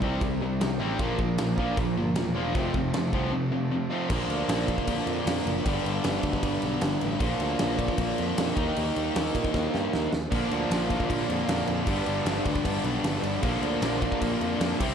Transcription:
Already playing: C3 G3 C4 E4
0.02 C2 C3 G3 C4, kick
0.21 C2 C3 G3, kick, crash
0.41 C2 C3 G3
0.60 C2 C3 G3, snare, crash
0.79 A1 C3 G3 C4 E4
0.99 A#1 A#2 F3 A#3 D4, kick, crash
1.19 A#1 A#2 F3, kick
1.38 A#1 A#2 F3, snare, crash
1.56 A#2 F3 A#3, kick
1.77 A#1 A#2 F3, kick, crash
1.97 G1 A#2 F3
2.15 E1 A#2 F3, snare, crash
2.35 A#2 F3 A#3 D4
2.54 F1 F2 C3 F3 A3 C4, kick, crash
2.74 F1 F2 C3, kick
2.93 F1 F2 C3, snare, crash
3.13 C2 F2 C3 F3, kick
3.32 F2 C3
3.52 F2 C3
3.71 F2 C3
3.90 F2 C3 F3 A3 C4
4.09 A#1 A#2 D3 F3 A#3 D4, kick, crash
4.29 D2, crash
4.49 A#1, snare, crash
4.68 kick, crash
4.78 kick
4.87 A#1, kick, crash
5.07 F2, crash
5.26 F2, snare, crash
5.46 F#1, crash
5.65 G1 G2 D3 G3 B3 D4, kick, crash
5.86 G1, crash
6.04 G1, snare, crash
6.23 D2, kick, crash
6.33 kick
6.43 G1, kick, crash
6.62 B1, crash
6.81 G1, snare, crash
7.01 A1, crash
7.20 A#1 A#2 D3 F3 A#3 D4, kick, crash
7.40 D2, crash
7.59 A#1, snare, crash
7.79 kick, crash
7.88 kick
7.98 A#1, kick, crash
8.18 F2, crash
8.38 F2, snare, crash
8.55 D#2 D#3 G3 A#3 D#4, kick, crash
8.76 D#2, crash
8.96 D#2, crash
9.16 D#2, snare, crash
9.35 A#2, kick, crash
9.45 kick
9.54 D#2, kick, snare
9.74 G2, snare
9.93 D#2, snare
10.13 D#2, snare
10.31 A#1 A#2 D3 F3 A#3 D4, kick, splash, crash
10.51 D2 A#2 D3 F3 A#3 D4, crash
10.71 A#1 A#2 D3 F3 A#3 D4, snare, crash
10.89 A#2 D3 F3 A#3 D4, kick, crash
11.00 kick
11.09 A#1 A#2 D3 F3 A#3 D4, kick, crash
11.29 F2 A#2 D3 F3 A#3 D4, crash
11.48 F2 A#2 D3 F3 A#3 D4, snare, crash
11.67 F2 A#2 D3 F3 A#3 D4, crash
11.86 G1 G2 D3 G3 B3 D4, kick, crash
12.06 G1 G2 D3 G3 B3 D4, crash
12.26 G1 G2 D3 G3 B3 D4, snare, crash
12.45 D2 G2 D3 G3 B3 D4, kick, crash
12.55 kick
12.65 G1 G2 D3 G3 B3 D4, kick, crash
12.84 B1 G2 D3 G3 B3 D4, crash
13.03 G1 G2 D3 G3 B3 D4, snare, crash
13.22 G1 G2 D3 G3 B3 D4, crash
13.42 A#1 A#2 D3 F3 A#3 D4, kick, crash
13.62 D2 A#2 D3 F3 A#3 D4, crash
13.81 A#1 A#2 D3 F3 A#3 D4, snare, crash
14.00 A#2 D3 F3 A#3 D4, kick, crash
14.12 kick
14.21 A#1 A#2 D3 F3 A#3 D4, kick, crash
14.41 F2 A#2 D3 F3 A#3 D4, crash
14.60 F2 A#2 D3 F3 A#3 D4, snare, crash
14.79 C2 C3 G3 C4 E4, kick, crash

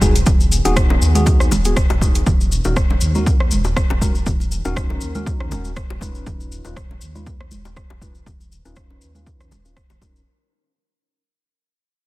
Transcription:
Already playing: D#1
0.01 B3 D#4 F#4 G#4, kick, muted conga, high conga, cabasa
0.16 closed hi-hat, cabasa
0.26 D#1, kick, closed hi-hat, low conga, cabasa
0.40 muted conga, cabasa
0.52 closed hi-hat, cabasa
0.65 D#1 B3 D#4 F#4 G#4, closed hi-hat, low bongo, cabasa
0.76 kick, cross-stick, closed hi-hat, cabasa
0.90 low bongo, muted conga
1.02 D#2, cabasa
1.15 B3 D#4 F#4 G#4, closed hi-hat, high conga, cabasa
1.26 kick, closed hi-hat, low bongo, cabasa
1.40 cross-stick, cabasa
1.51 D#1, high bongo, low bongo, high conga, low conga, cabasa
1.65 B3 D#4 F#4 G#4, closed hi-hat, muted conga, cabasa
1.76 kick, cross-stick, closed hi-hat, cabasa
1.90 D#1, closed hi-hat, high bongo, high conga
2.01 B3 D#4 F#4 G#4, kick, high bongo, muted conga, high conga, cabasa
2.15 closed hi-hat, cabasa
2.27 D#1, kick, low conga, cabasa
2.41 muted conga, cabasa
2.52 cabasa
2.64 D#1 C#4 D#4 F#4 A#4, low bongo, cabasa
2.76 kick, cross-stick, cabasa
2.90 low bongo, muted conga
3.01 D#2, cabasa
3.15 C#4 D#4 F#4 A#4, high conga, cabasa
3.26 kick, cabasa
3.40 cross-stick
3.51 D#1, high conga, cabasa
3.64 high bongo, muted conga, cabasa
3.76 kick, cross-stick, cabasa
3.90 D#1, high bongo, low bongo
4.01 C#4 D#4 F#4 A#4, kick, muted conga, high conga, cabasa
4.15 cabasa
4.26 D#1, kick, low conga, cabasa
4.40 muted conga, cabasa
4.52 cabasa
4.65 D#1 C#4 D#4 F#4 A#4, low bongo, cabasa
4.76 kick, cross-stick, cabasa
4.90 low bongo, muted conga
5.01 D#2, cabasa
5.15 C#4 D#4 F#4 A#4, high conga, cabasa
5.26 kick, low bongo, muted conga, cabasa
5.40 cross-stick
5.51 D#1 C#4 D#4 F#4 A#4, high bongo, low bongo, high conga, low conga, cabasa
5.65 muted conga, cabasa
5.76 kick, cross-stick, cabasa
5.90 D#1, high bongo, high conga
6.01 C#4 D#4 F4 B4, kick, high bongo, muted conga, high conga, cabasa
6.15 cabasa
6.27 D#1, kick, low conga, cabasa
6.40 muted conga, cabasa
6.52 cabasa
6.65 D#1 C#4 D#4 F4 B4, low bongo, cabasa
6.76 kick, cross-stick, cabasa
6.90 low bongo, muted conga
7.01 D#2, cabasa
7.15 C#4 D#4 F4 B4, high conga, cabasa
7.27 kick, muted conga, cabasa
7.41 cross-stick
7.51 D#1, high conga, cabasa
7.65 high bongo, muted conga, cabasa
7.77 kick, cross-stick, cabasa
7.90 D#1, high bongo, low bongo
8.01 C#4 D#4 F4 B4, kick, muted conga, high conga, cabasa
8.15 cabasa
8.26 D#1, kick, low conga, cabasa
8.40 muted conga, cabasa
8.52 cabasa
8.65 D#1 C#4 D#4 F4 B4, low bongo, cabasa
8.76 kick, cross-stick, cabasa
8.90 low bongo, muted conga
9.01 D#2, cabasa
9.15 C#4 D#4 F4 B4, high conga, cabasa
9.27 kick, low bongo, muted conga, cabasa
9.41 cross-stick, cabasa
9.51 D#1, high bongo, low bongo, high conga, low conga, cabasa
9.65 C#4 D#4 F4 B4, muted conga, cabasa
9.76 kick, cross-stick, high conga, cabasa
9.90 D#1, high bongo, high conga, low conga, cabasa
10.01 C#4 D#4 F4 A#4, kick, high bongo, muted conga, high conga, cabasa
10.16 cabasa

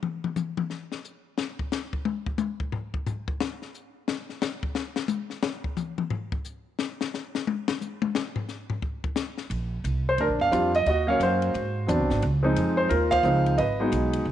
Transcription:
0.03 mid tom
0.24 mid tom
0.36 hi-hat pedal, mid tom
0.57 mid tom
0.70 snare
0.92 snare
1.04 hi-hat pedal
1.38 snare
1.59 kick
1.72 snare, hi-hat pedal
1.93 kick
2.05 high tom
2.26 kick
2.38 hi-hat pedal, high tom
2.60 kick
2.72 floor tom
2.94 kick
3.07 floor tom, hi-hat pedal
3.28 kick
3.40 snare
3.62 snare
3.74 hi-hat pedal
4.08 snare
4.29 snare
4.42 snare, hi-hat pedal
4.63 kick
4.75 snare
4.96 snare
5.08 hi-hat pedal, high tom
5.30 snare
5.43 snare
5.64 kick
5.77 hi-hat pedal, mid tom
5.98 mid tom
6.10 floor tom
6.32 kick
6.45 hi-hat pedal
6.79 snare
7.01 snare
7.14 snare, hi-hat pedal
7.35 snare
7.47 high tom
7.68 snare
7.81 hi-hat pedal, high tom
8.02 high tom
8.15 snare
8.36 floor tom
8.49 snare, hi-hat pedal
8.70 floor tom
8.82 kick
9.04 kick
9.16 snare, hi-hat pedal
9.38 snare
9.50 A#1, kick, ride
9.84 C2, kick, hi-hat pedal, ride
10.09 C5
10.18 D2 D4 A#4, kick, ride
10.28 A#1
10.39 G1 F5, kick
10.51 F2 G3 C4 D4 F4, kick, hi-hat pedal, ride
10.75 D#5, ride
10.86 D#2 F#4 D#5, kick, ride
11.07 F#3 A#3 C#4 C#5 F5
11.20 F#2 C5, kick, hi-hat pedal, ride
11.24 F#4
11.42 ride
11.54 G#2, kick, ride
11.87 E2 F#3 B3 C4 D4, kick, hi-hat pedal, ride
11.99 C2
12.10 G#1, snare
12.22 C#2, kick, ride
12.43 F3 G#3 C4 D#4
12.56 F2, kick, hi-hat pedal, ride
12.77 C5
12.89 D#2 F4 A#4, kick, ride
13.11 C5 F5, kick, ride
13.23 C#2 F3 G#3 C4 D#4, hi-hat pedal
13.46 ride
13.58 G#1 B4 D#5, kick, ride
13.80 F#3 G#3 B3 D#4
13.92 B1, kick, hi-hat pedal, ride
14.13 ride
14.25 C#2, kick

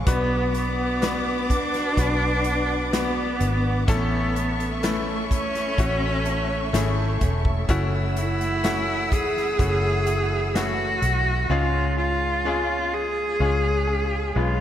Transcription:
0.07 B1 B2 F#3 B3 D4 F#4 B4 F#5 D6, kick, closed hi-hat
0.54 B3 D4 F#4, closed hi-hat
1.02 F#3 B3 D4 F#4 B4, snare, closed hi-hat
1.49 D4, kick, closed hi-hat
1.74 snare, closed hi-hat
1.97 B1 B3 D4 F#4 B4, kick, closed hi-hat
2.44 B3 D4 F#4, closed hi-hat
2.92 F#3 B3 D4 F#4 B4, snare, closed hi-hat
3.40 G#1 B3 D4 F#4, closed hi-hat
3.87 A1 A2 E3 A3 B3 C#4 E4 A4 E5 C#6, kick, closed hi-hat
4.35 A3 C#4 E4 A4, closed hi-hat
4.60 closed hi-hat
4.83 A3 C#4 E4 A4 B4, snare, closed hi-hat
5.31 C#4, kick, closed hi-hat
5.55 snare, closed hi-hat
5.78 A1 A3 C#4 E4 F#4, kick, closed hi-hat
6.25 A3 C#4 E4 A4, closed hi-hat
6.73 G#1 A3 C#4 E4 G#4 A4, snare, closed hi-hat
7.21 E1 A3 C#4 E4 A4, kick, closed hi-hat
7.45 kick
7.68 F#1 F#2 C#3 E3 A3 C#4 E4 F#4 F#5 E6, kick, closed hi-hat
8.16 E3 A3 E4 F#4, closed hi-hat
8.41 closed hi-hat
8.63 E3 A3 C#4 E4 F#4, snare, closed hi-hat
9.12 G#4, kick, closed hi-hat
9.37 snare
9.59 F#1 A3 C#4 E4 F#4, kick, closed hi-hat
10.07 E3 A3 E4 F#4, closed hi-hat
10.54 E3 A3 C#4 E4 F#4, snare, closed hi-hat
11.02 B1 E3 A3 E4 F#4, closed hi-hat
11.50 C#2 G#2 C#3 G#3 C#4 F4 G#4
11.97 C#4 F4 G#4
12.44 G#3 C#4 F4 G#4
12.93 G#4
13.40 C#2 G#3 C#4 F4 G#4
13.87 C#4 F4 G#4
14.35 B1 G#3 C#4 F4 G#4 B4

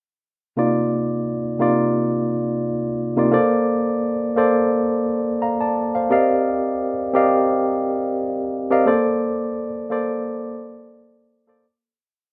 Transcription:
0.57 C3 A#3 D#4 F4 D5
1.59 C3 A#3 D#4 F4 D5
3.16 C3 A#3 D#4 F4 D5
3.31 A#3 A4 C5 D5
4.36 A#3 A4 C5 D5
5.42 F5 A#5
5.61 D5 A5
5.95 C5 F5
6.10 C4 G4 A#4 D5 D#5 F5
7.14 C4 G4 A#4 D5 D#5 F5
8.70 C4 G4 A#4 D5 D#5 F5
8.86 A#3 A4 C5 D5
9.90 A#3 A4 C5 D5
11.47 A#3 A4 C5 D5

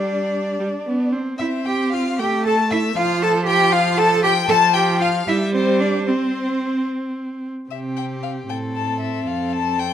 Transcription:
Already playing: G3 D4 D5
0.59 G3
0.86 B3
1.12 C4
1.38 C4 E4 E5
1.65 G4 G5
1.92 F4 F5
2.19 A3 G4 G5
2.45 A4 A5
2.71 E4 E5
2.96 F3 F4 F5
3.21 A4 A5
3.47 G4 G5
3.72 F4 F5
3.97 A4 A5
4.23 G4 G5
4.49 F3 A4 A5
4.74 G4 G5
5.00 F4 F5
5.27 G3 E4 E5
5.53 C4 C5
5.80 D4 D5
6.06 C4 C5
7.70 C3 C4 G4 E5
7.97 G5
8.23 F5
8.49 A2 C4 A4 G5
8.76 A5
9.00 E5
9.26 F2 A4 F5
9.53 A5
9.79 G5

